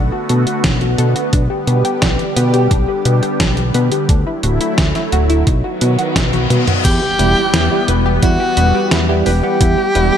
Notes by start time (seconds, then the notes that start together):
Already playing: B1 D3 A3 B3 D4 F#4
0.12 F#4
0.29 B2 A4, closed hi-hat
0.47 F#4, closed hi-hat
0.64 B1 D4, kick, snare, closed hi-hat
0.81 F#4, closed hi-hat
0.98 B2 A4, closed hi-hat
1.16 F#4, closed hi-hat
1.33 B1 G3 D4 G4, kick, closed hi-hat
1.50 G4
1.67 B2 B4, closed hi-hat
1.85 G4, closed hi-hat
2.02 B1 D4, kick, snare, closed hi-hat
2.19 G4, closed hi-hat
2.36 B2 B4, closed hi-hat
2.54 G4, closed hi-hat
2.71 B1 D4, kick, closed hi-hat
2.88 G4
3.05 B2 B4, closed hi-hat
3.23 G4, closed hi-hat
3.40 B1 D4, kick, snare, closed hi-hat
3.57 G4, closed hi-hat
3.74 B2 B4, closed hi-hat
3.92 G4, closed hi-hat
4.09 D2 F#3 A3 D4 E4, kick, closed hi-hat
4.27 E4
4.43 D1 F#4, closed hi-hat
4.61 E4, closed hi-hat
4.78 D2 D4, kick, snare, closed hi-hat
4.95 E4, snare, closed hi-hat
5.12 D1 F#4, closed hi-hat
5.30 E4, closed hi-hat
5.47 B1 D#3 B3 D#4 F#4, kick, closed hi-hat, reverse cymbal
5.64 F#4
5.81 B2 B4, closed hi-hat
5.99 F#4, closed hi-hat
6.16 B1 D#4, kick, snare, closed hi-hat, high tom
6.33 F#4, closed hi-hat, high tom
6.50 B2 B4, closed hi-hat, mid tom
6.67 F#4, closed hi-hat, mid tom
6.85 E2 E3 G3 B3 E4 G4, kick, closed hi-hat, crash, impact
7.02 G4
7.19 E1 G3 B3 E4 B4, closed hi-hat
7.37 G4
7.54 E2 E4, snare, closed hi-hat
7.71 G3 B3 E4 G4
7.88 E1 B4, closed hi-hat
8.06 G4
8.23 E2 G3 B3 E4 F#4, kick, closed hi-hat
8.40 G4
8.57 E1 G3 B3 F#4 B4, closed hi-hat
8.75 G4
8.91 E2 E4, snare, closed hi-hat
9.09 G3 B3 E4 G4
9.26 E1 G4 B4, open hi-hat
9.43 G3 B3 G4 F#5
9.61 E2 A3 E4, kick, closed hi-hat
9.78 G4
9.95 E1 G3 B3 E4 B4, closed hi-hat
10.12 G4